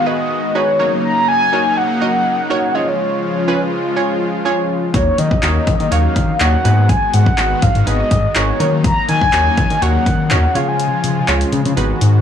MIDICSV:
0, 0, Header, 1, 6, 480
1, 0, Start_track
1, 0, Tempo, 487805
1, 1022, Time_signature, 4, 2, 24, 8
1, 12018, End_track
2, 0, Start_track
2, 0, Title_t, "Soft synth lead"
2, 0, Program_c, 0, 80
2, 64, Note_on_c, 0, 75, 105
2, 544, Note_on_c, 0, 73, 104
2, 559, Note_off_c, 0, 75, 0
2, 911, Note_off_c, 0, 73, 0
2, 1024, Note_on_c, 0, 82, 114
2, 1247, Note_off_c, 0, 82, 0
2, 1263, Note_on_c, 0, 80, 117
2, 1744, Note_on_c, 0, 78, 111
2, 1759, Note_off_c, 0, 80, 0
2, 2704, Note_on_c, 0, 75, 97
2, 2719, Note_off_c, 0, 78, 0
2, 2833, Note_on_c, 0, 73, 91
2, 2847, Note_off_c, 0, 75, 0
2, 3551, Note_off_c, 0, 73, 0
2, 4862, Note_on_c, 0, 73, 89
2, 5104, Note_on_c, 0, 75, 97
2, 5118, Note_off_c, 0, 73, 0
2, 5823, Note_on_c, 0, 77, 99
2, 5838, Note_off_c, 0, 75, 0
2, 6297, Note_off_c, 0, 77, 0
2, 6302, Note_on_c, 0, 78, 103
2, 6783, Note_on_c, 0, 80, 108
2, 6798, Note_off_c, 0, 78, 0
2, 7023, Note_on_c, 0, 78, 110
2, 7038, Note_off_c, 0, 80, 0
2, 7504, Note_on_c, 0, 77, 97
2, 7519, Note_off_c, 0, 78, 0
2, 7737, Note_off_c, 0, 77, 0
2, 7743, Note_on_c, 0, 75, 102
2, 8223, Note_on_c, 0, 73, 102
2, 8238, Note_off_c, 0, 75, 0
2, 8590, Note_off_c, 0, 73, 0
2, 8704, Note_on_c, 0, 82, 117
2, 8926, Note_off_c, 0, 82, 0
2, 8944, Note_on_c, 0, 80, 120
2, 9663, Note_on_c, 0, 78, 110
2, 9678, Note_off_c, 0, 80, 0
2, 10383, Note_on_c, 0, 77, 97
2, 10398, Note_off_c, 0, 78, 0
2, 10510, Note_on_c, 0, 80, 96
2, 10525, Note_off_c, 0, 77, 0
2, 11230, Note_off_c, 0, 80, 0
2, 12018, End_track
3, 0, Start_track
3, 0, Title_t, "Synth pluck"
3, 0, Program_c, 1, 84
3, 60, Note_on_c, 1, 63, 76
3, 61, Note_on_c, 1, 66, 66
3, 63, Note_on_c, 1, 68, 67
3, 64, Note_on_c, 1, 71, 84
3, 431, Note_off_c, 1, 63, 0
3, 432, Note_off_c, 1, 66, 0
3, 433, Note_off_c, 1, 68, 0
3, 434, Note_off_c, 1, 71, 0
3, 541, Note_on_c, 1, 63, 87
3, 543, Note_on_c, 1, 66, 82
3, 545, Note_on_c, 1, 68, 81
3, 547, Note_on_c, 1, 71, 94
3, 769, Note_off_c, 1, 63, 0
3, 770, Note_off_c, 1, 66, 0
3, 780, Note_on_c, 1, 63, 78
3, 782, Note_on_c, 1, 66, 71
3, 783, Note_off_c, 1, 68, 0
3, 784, Note_off_c, 1, 71, 0
3, 784, Note_on_c, 1, 70, 72
3, 785, Note_on_c, 1, 73, 90
3, 1363, Note_off_c, 1, 63, 0
3, 1364, Note_off_c, 1, 66, 0
3, 1365, Note_off_c, 1, 70, 0
3, 1365, Note_off_c, 1, 73, 0
3, 1502, Note_on_c, 1, 63, 88
3, 1503, Note_on_c, 1, 66, 79
3, 1505, Note_on_c, 1, 70, 77
3, 1506, Note_on_c, 1, 73, 93
3, 1872, Note_off_c, 1, 63, 0
3, 1873, Note_off_c, 1, 66, 0
3, 1874, Note_off_c, 1, 70, 0
3, 1875, Note_off_c, 1, 73, 0
3, 1981, Note_on_c, 1, 63, 87
3, 1983, Note_on_c, 1, 66, 80
3, 1984, Note_on_c, 1, 70, 85
3, 1985, Note_on_c, 1, 75, 96
3, 2352, Note_off_c, 1, 63, 0
3, 2353, Note_off_c, 1, 66, 0
3, 2354, Note_off_c, 1, 70, 0
3, 2354, Note_off_c, 1, 75, 0
3, 2461, Note_on_c, 1, 63, 104
3, 2463, Note_on_c, 1, 66, 100
3, 2464, Note_on_c, 1, 70, 97
3, 2466, Note_on_c, 1, 73, 114
3, 2694, Note_off_c, 1, 73, 0
3, 2701, Note_on_c, 1, 61, 83
3, 2702, Note_off_c, 1, 63, 0
3, 2703, Note_off_c, 1, 66, 0
3, 2703, Note_off_c, 1, 70, 0
3, 2703, Note_on_c, 1, 65, 75
3, 2704, Note_on_c, 1, 68, 72
3, 2706, Note_on_c, 1, 73, 89
3, 3284, Note_off_c, 1, 61, 0
3, 3284, Note_off_c, 1, 65, 0
3, 3285, Note_off_c, 1, 68, 0
3, 3286, Note_off_c, 1, 73, 0
3, 3421, Note_on_c, 1, 61, 94
3, 3422, Note_on_c, 1, 65, 82
3, 3424, Note_on_c, 1, 68, 86
3, 3426, Note_on_c, 1, 71, 107
3, 3792, Note_off_c, 1, 61, 0
3, 3793, Note_off_c, 1, 65, 0
3, 3793, Note_off_c, 1, 68, 0
3, 3794, Note_off_c, 1, 71, 0
3, 3900, Note_on_c, 1, 61, 87
3, 3901, Note_on_c, 1, 65, 83
3, 3903, Note_on_c, 1, 68, 79
3, 3904, Note_on_c, 1, 73, 99
3, 4271, Note_off_c, 1, 61, 0
3, 4272, Note_off_c, 1, 65, 0
3, 4273, Note_off_c, 1, 68, 0
3, 4274, Note_off_c, 1, 73, 0
3, 4380, Note_on_c, 1, 61, 100
3, 4382, Note_on_c, 1, 65, 92
3, 4383, Note_on_c, 1, 68, 97
3, 4385, Note_on_c, 1, 73, 113
3, 4752, Note_off_c, 1, 61, 0
3, 4753, Note_off_c, 1, 65, 0
3, 4753, Note_off_c, 1, 68, 0
3, 4754, Note_off_c, 1, 73, 0
3, 4860, Note_on_c, 1, 63, 77
3, 4862, Note_on_c, 1, 66, 71
3, 4864, Note_on_c, 1, 70, 73
3, 4864, Note_on_c, 1, 73, 85
3, 5232, Note_off_c, 1, 63, 0
3, 5232, Note_off_c, 1, 66, 0
3, 5233, Note_off_c, 1, 70, 0
3, 5234, Note_off_c, 1, 73, 0
3, 5339, Note_on_c, 1, 63, 84
3, 5340, Note_on_c, 1, 66, 79
3, 5342, Note_on_c, 1, 70, 78
3, 5344, Note_on_c, 1, 73, 95
3, 5711, Note_off_c, 1, 63, 0
3, 5712, Note_off_c, 1, 66, 0
3, 5713, Note_off_c, 1, 70, 0
3, 5714, Note_off_c, 1, 73, 0
3, 5819, Note_on_c, 1, 63, 86
3, 5821, Note_on_c, 1, 66, 78
3, 5822, Note_on_c, 1, 70, 78
3, 5824, Note_on_c, 1, 73, 101
3, 6191, Note_off_c, 1, 63, 0
3, 6192, Note_off_c, 1, 66, 0
3, 6192, Note_off_c, 1, 70, 0
3, 6193, Note_off_c, 1, 73, 0
3, 6299, Note_on_c, 1, 63, 87
3, 6301, Note_on_c, 1, 66, 84
3, 6302, Note_on_c, 1, 70, 80
3, 6304, Note_on_c, 1, 73, 98
3, 6526, Note_off_c, 1, 63, 0
3, 6528, Note_off_c, 1, 66, 0
3, 6538, Note_on_c, 1, 63, 78
3, 6540, Note_on_c, 1, 66, 73
3, 6541, Note_on_c, 1, 68, 73
3, 6542, Note_off_c, 1, 70, 0
3, 6543, Note_off_c, 1, 73, 0
3, 6543, Note_on_c, 1, 71, 88
3, 7122, Note_off_c, 1, 63, 0
3, 7123, Note_off_c, 1, 66, 0
3, 7124, Note_off_c, 1, 68, 0
3, 7125, Note_off_c, 1, 71, 0
3, 7260, Note_on_c, 1, 63, 79
3, 7262, Note_on_c, 1, 66, 76
3, 7263, Note_on_c, 1, 68, 70
3, 7265, Note_on_c, 1, 71, 87
3, 7631, Note_off_c, 1, 63, 0
3, 7632, Note_off_c, 1, 66, 0
3, 7633, Note_off_c, 1, 68, 0
3, 7634, Note_off_c, 1, 71, 0
3, 7739, Note_on_c, 1, 63, 74
3, 7741, Note_on_c, 1, 66, 68
3, 7743, Note_on_c, 1, 68, 71
3, 7744, Note_on_c, 1, 71, 84
3, 8111, Note_off_c, 1, 63, 0
3, 8112, Note_off_c, 1, 66, 0
3, 8113, Note_off_c, 1, 68, 0
3, 8114, Note_off_c, 1, 71, 0
3, 8219, Note_on_c, 1, 63, 89
3, 8222, Note_on_c, 1, 66, 82
3, 8223, Note_on_c, 1, 68, 80
3, 8225, Note_on_c, 1, 70, 96
3, 8449, Note_off_c, 1, 63, 0
3, 8450, Note_off_c, 1, 66, 0
3, 8452, Note_off_c, 1, 70, 0
3, 8461, Note_on_c, 1, 63, 80
3, 8462, Note_on_c, 1, 66, 77
3, 8463, Note_off_c, 1, 68, 0
3, 8464, Note_on_c, 1, 70, 73
3, 8465, Note_on_c, 1, 73, 88
3, 9043, Note_off_c, 1, 63, 0
3, 9044, Note_off_c, 1, 66, 0
3, 9045, Note_off_c, 1, 70, 0
3, 9045, Note_off_c, 1, 73, 0
3, 9181, Note_on_c, 1, 63, 85
3, 9182, Note_on_c, 1, 66, 80
3, 9184, Note_on_c, 1, 70, 78
3, 9186, Note_on_c, 1, 73, 99
3, 9552, Note_off_c, 1, 63, 0
3, 9553, Note_off_c, 1, 66, 0
3, 9553, Note_off_c, 1, 70, 0
3, 9554, Note_off_c, 1, 73, 0
3, 9661, Note_on_c, 1, 63, 91
3, 9663, Note_on_c, 1, 66, 83
3, 9664, Note_on_c, 1, 70, 79
3, 9665, Note_on_c, 1, 73, 101
3, 10032, Note_off_c, 1, 63, 0
3, 10033, Note_off_c, 1, 66, 0
3, 10034, Note_off_c, 1, 70, 0
3, 10034, Note_off_c, 1, 73, 0
3, 10141, Note_on_c, 1, 63, 89
3, 10143, Note_on_c, 1, 66, 85
3, 10144, Note_on_c, 1, 70, 82
3, 10146, Note_on_c, 1, 73, 100
3, 10374, Note_off_c, 1, 73, 0
3, 10381, Note_on_c, 1, 61, 80
3, 10382, Note_off_c, 1, 63, 0
3, 10383, Note_off_c, 1, 66, 0
3, 10383, Note_off_c, 1, 70, 0
3, 10383, Note_on_c, 1, 65, 74
3, 10384, Note_on_c, 1, 68, 75
3, 10386, Note_on_c, 1, 73, 91
3, 10963, Note_off_c, 1, 61, 0
3, 10964, Note_off_c, 1, 65, 0
3, 10965, Note_off_c, 1, 68, 0
3, 10966, Note_off_c, 1, 73, 0
3, 11101, Note_on_c, 1, 61, 90
3, 11103, Note_on_c, 1, 65, 85
3, 11104, Note_on_c, 1, 68, 86
3, 11106, Note_on_c, 1, 73, 102
3, 11472, Note_off_c, 1, 61, 0
3, 11473, Note_off_c, 1, 65, 0
3, 11474, Note_off_c, 1, 68, 0
3, 11474, Note_off_c, 1, 73, 0
3, 11580, Note_on_c, 1, 63, 90
3, 11581, Note_on_c, 1, 66, 78
3, 11583, Note_on_c, 1, 68, 82
3, 11584, Note_on_c, 1, 71, 104
3, 11951, Note_off_c, 1, 63, 0
3, 11952, Note_off_c, 1, 66, 0
3, 11953, Note_off_c, 1, 68, 0
3, 11954, Note_off_c, 1, 71, 0
3, 12018, End_track
4, 0, Start_track
4, 0, Title_t, "Supersaw synth"
4, 0, Program_c, 2, 81
4, 0, Note_on_c, 2, 51, 86
4, 0, Note_on_c, 2, 56, 80
4, 0, Note_on_c, 2, 59, 75
4, 0, Note_on_c, 2, 66, 92
4, 762, Note_off_c, 2, 66, 0
4, 763, Note_off_c, 2, 51, 0
4, 763, Note_off_c, 2, 56, 0
4, 763, Note_off_c, 2, 59, 0
4, 782, Note_on_c, 2, 49, 84
4, 783, Note_on_c, 2, 54, 78
4, 783, Note_on_c, 2, 63, 93
4, 784, Note_on_c, 2, 58, 80
4, 2683, Note_off_c, 2, 63, 0
4, 2684, Note_off_c, 2, 54, 0
4, 2684, Note_off_c, 2, 58, 0
4, 2702, Note_on_c, 2, 65, 95
4, 2703, Note_on_c, 2, 53, 78
4, 2703, Note_on_c, 2, 56, 80
4, 4823, Note_off_c, 2, 49, 0
4, 4841, Note_off_c, 2, 53, 0
4, 4841, Note_off_c, 2, 56, 0
4, 4841, Note_off_c, 2, 65, 0
4, 4862, Note_on_c, 2, 49, 84
4, 4862, Note_on_c, 2, 58, 78
4, 6525, Note_off_c, 2, 49, 0
4, 6525, Note_off_c, 2, 58, 0
4, 6542, Note_on_c, 2, 51, 85
4, 6542, Note_on_c, 2, 56, 77
4, 6542, Note_on_c, 2, 66, 99
4, 6543, Note_on_c, 2, 59, 77
4, 8443, Note_off_c, 2, 51, 0
4, 8443, Note_off_c, 2, 56, 0
4, 8443, Note_off_c, 2, 66, 0
4, 8444, Note_off_c, 2, 59, 0
4, 8463, Note_on_c, 2, 49, 90
4, 8463, Note_on_c, 2, 54, 83
4, 8463, Note_on_c, 2, 58, 80
4, 8464, Note_on_c, 2, 63, 93
4, 10363, Note_off_c, 2, 54, 0
4, 10363, Note_off_c, 2, 58, 0
4, 10364, Note_off_c, 2, 63, 0
4, 10381, Note_on_c, 2, 53, 75
4, 10382, Note_on_c, 2, 56, 81
4, 10382, Note_on_c, 2, 65, 93
4, 11552, Note_off_c, 2, 49, 0
4, 11570, Note_off_c, 2, 53, 0
4, 11570, Note_off_c, 2, 65, 0
4, 11584, Note_on_c, 2, 51, 81
4, 11585, Note_on_c, 2, 59, 72
4, 11585, Note_on_c, 2, 66, 89
4, 12018, Note_off_c, 2, 51, 0
4, 12018, Note_off_c, 2, 56, 0
4, 12018, Note_off_c, 2, 59, 0
4, 12018, Note_off_c, 2, 66, 0
4, 12018, End_track
5, 0, Start_track
5, 0, Title_t, "Analog synth bass"
5, 0, Program_c, 3, 38
5, 4861, Note_on_c, 3, 39, 109
5, 5018, Note_off_c, 3, 39, 0
5, 5101, Note_on_c, 3, 51, 113
5, 5257, Note_off_c, 3, 51, 0
5, 5343, Note_on_c, 3, 39, 101
5, 5498, Note_off_c, 3, 39, 0
5, 5582, Note_on_c, 3, 51, 101
5, 5665, Note_off_c, 3, 51, 0
5, 5710, Note_on_c, 3, 51, 106
5, 5783, Note_off_c, 3, 51, 0
5, 5823, Note_on_c, 3, 39, 112
5, 5979, Note_off_c, 3, 39, 0
5, 6062, Note_on_c, 3, 51, 93
5, 6218, Note_off_c, 3, 51, 0
5, 6303, Note_on_c, 3, 39, 104
5, 6459, Note_off_c, 3, 39, 0
5, 6544, Note_on_c, 3, 44, 106
5, 6855, Note_off_c, 3, 44, 0
5, 7023, Note_on_c, 3, 44, 114
5, 7179, Note_off_c, 3, 44, 0
5, 7263, Note_on_c, 3, 32, 101
5, 7419, Note_off_c, 3, 32, 0
5, 7502, Note_on_c, 3, 44, 109
5, 7585, Note_off_c, 3, 44, 0
5, 7631, Note_on_c, 3, 44, 100
5, 7704, Note_off_c, 3, 44, 0
5, 7743, Note_on_c, 3, 32, 110
5, 7899, Note_off_c, 3, 32, 0
5, 7981, Note_on_c, 3, 44, 97
5, 8138, Note_off_c, 3, 44, 0
5, 8224, Note_on_c, 3, 32, 110
5, 8379, Note_off_c, 3, 32, 0
5, 8463, Note_on_c, 3, 51, 100
5, 8775, Note_off_c, 3, 51, 0
5, 8943, Note_on_c, 3, 51, 104
5, 9099, Note_off_c, 3, 51, 0
5, 9183, Note_on_c, 3, 39, 109
5, 9339, Note_off_c, 3, 39, 0
5, 9422, Note_on_c, 3, 51, 103
5, 9505, Note_off_c, 3, 51, 0
5, 9551, Note_on_c, 3, 51, 98
5, 9624, Note_off_c, 3, 51, 0
5, 9663, Note_on_c, 3, 39, 110
5, 9819, Note_off_c, 3, 39, 0
5, 9902, Note_on_c, 3, 51, 101
5, 10143, Note_on_c, 3, 39, 104
5, 10158, Note_off_c, 3, 51, 0
5, 10299, Note_off_c, 3, 39, 0
5, 10382, Note_on_c, 3, 49, 99
5, 10694, Note_off_c, 3, 49, 0
5, 10862, Note_on_c, 3, 49, 99
5, 11018, Note_off_c, 3, 49, 0
5, 11102, Note_on_c, 3, 37, 105
5, 11258, Note_off_c, 3, 37, 0
5, 11342, Note_on_c, 3, 49, 112
5, 11425, Note_off_c, 3, 49, 0
5, 11469, Note_on_c, 3, 49, 107
5, 11543, Note_off_c, 3, 49, 0
5, 11581, Note_on_c, 3, 32, 111
5, 11738, Note_off_c, 3, 32, 0
5, 11822, Note_on_c, 3, 44, 101
5, 12018, Note_off_c, 3, 44, 0
5, 12018, End_track
6, 0, Start_track
6, 0, Title_t, "Drums"
6, 4862, Note_on_c, 9, 36, 117
6, 4862, Note_on_c, 9, 42, 91
6, 4960, Note_off_c, 9, 36, 0
6, 4960, Note_off_c, 9, 42, 0
6, 5101, Note_on_c, 9, 42, 82
6, 5199, Note_off_c, 9, 42, 0
6, 5227, Note_on_c, 9, 36, 101
6, 5325, Note_off_c, 9, 36, 0
6, 5341, Note_on_c, 9, 39, 109
6, 5342, Note_on_c, 9, 42, 90
6, 5440, Note_off_c, 9, 39, 0
6, 5440, Note_off_c, 9, 42, 0
6, 5580, Note_on_c, 9, 42, 74
6, 5582, Note_on_c, 9, 36, 107
6, 5678, Note_off_c, 9, 42, 0
6, 5680, Note_off_c, 9, 36, 0
6, 5708, Note_on_c, 9, 42, 52
6, 5806, Note_off_c, 9, 42, 0
6, 5824, Note_on_c, 9, 42, 85
6, 5922, Note_off_c, 9, 42, 0
6, 6061, Note_on_c, 9, 36, 92
6, 6061, Note_on_c, 9, 42, 83
6, 6159, Note_off_c, 9, 42, 0
6, 6160, Note_off_c, 9, 36, 0
6, 6301, Note_on_c, 9, 39, 115
6, 6304, Note_on_c, 9, 42, 92
6, 6399, Note_off_c, 9, 39, 0
6, 6402, Note_off_c, 9, 42, 0
6, 6545, Note_on_c, 9, 42, 87
6, 6643, Note_off_c, 9, 42, 0
6, 6782, Note_on_c, 9, 36, 118
6, 6783, Note_on_c, 9, 42, 94
6, 6881, Note_off_c, 9, 36, 0
6, 6881, Note_off_c, 9, 42, 0
6, 7021, Note_on_c, 9, 42, 86
6, 7120, Note_off_c, 9, 42, 0
6, 7147, Note_on_c, 9, 36, 105
6, 7246, Note_off_c, 9, 36, 0
6, 7262, Note_on_c, 9, 39, 107
6, 7262, Note_on_c, 9, 42, 89
6, 7360, Note_off_c, 9, 39, 0
6, 7361, Note_off_c, 9, 42, 0
6, 7501, Note_on_c, 9, 42, 72
6, 7502, Note_on_c, 9, 36, 107
6, 7599, Note_off_c, 9, 42, 0
6, 7601, Note_off_c, 9, 36, 0
6, 7628, Note_on_c, 9, 42, 54
6, 7726, Note_off_c, 9, 42, 0
6, 7744, Note_on_c, 9, 42, 84
6, 7842, Note_off_c, 9, 42, 0
6, 7981, Note_on_c, 9, 42, 85
6, 7982, Note_on_c, 9, 36, 92
6, 8080, Note_off_c, 9, 36, 0
6, 8080, Note_off_c, 9, 42, 0
6, 8221, Note_on_c, 9, 39, 114
6, 8223, Note_on_c, 9, 42, 97
6, 8319, Note_off_c, 9, 39, 0
6, 8322, Note_off_c, 9, 42, 0
6, 8465, Note_on_c, 9, 42, 87
6, 8563, Note_off_c, 9, 42, 0
6, 8702, Note_on_c, 9, 36, 123
6, 8703, Note_on_c, 9, 42, 92
6, 8801, Note_off_c, 9, 36, 0
6, 8801, Note_off_c, 9, 42, 0
6, 8941, Note_on_c, 9, 42, 82
6, 9039, Note_off_c, 9, 42, 0
6, 9068, Note_on_c, 9, 36, 106
6, 9166, Note_off_c, 9, 36, 0
6, 9182, Note_on_c, 9, 39, 111
6, 9182, Note_on_c, 9, 42, 86
6, 9280, Note_off_c, 9, 39, 0
6, 9280, Note_off_c, 9, 42, 0
6, 9421, Note_on_c, 9, 42, 71
6, 9422, Note_on_c, 9, 36, 108
6, 9520, Note_off_c, 9, 42, 0
6, 9521, Note_off_c, 9, 36, 0
6, 9549, Note_on_c, 9, 42, 55
6, 9647, Note_off_c, 9, 42, 0
6, 9665, Note_on_c, 9, 42, 83
6, 9764, Note_off_c, 9, 42, 0
6, 9902, Note_on_c, 9, 36, 97
6, 9903, Note_on_c, 9, 42, 83
6, 10001, Note_off_c, 9, 36, 0
6, 10001, Note_off_c, 9, 42, 0
6, 10142, Note_on_c, 9, 39, 111
6, 10144, Note_on_c, 9, 42, 98
6, 10240, Note_off_c, 9, 39, 0
6, 10243, Note_off_c, 9, 42, 0
6, 10386, Note_on_c, 9, 42, 91
6, 10484, Note_off_c, 9, 42, 0
6, 10623, Note_on_c, 9, 42, 94
6, 10721, Note_off_c, 9, 42, 0
6, 10861, Note_on_c, 9, 42, 88
6, 10959, Note_off_c, 9, 42, 0
6, 11102, Note_on_c, 9, 39, 111
6, 11102, Note_on_c, 9, 42, 82
6, 11200, Note_off_c, 9, 39, 0
6, 11201, Note_off_c, 9, 42, 0
6, 11228, Note_on_c, 9, 42, 57
6, 11326, Note_off_c, 9, 42, 0
6, 11340, Note_on_c, 9, 42, 72
6, 11439, Note_off_c, 9, 42, 0
6, 11468, Note_on_c, 9, 42, 53
6, 11567, Note_off_c, 9, 42, 0
6, 11584, Note_on_c, 9, 42, 82
6, 11683, Note_off_c, 9, 42, 0
6, 11821, Note_on_c, 9, 42, 85
6, 11920, Note_off_c, 9, 42, 0
6, 12018, End_track
0, 0, End_of_file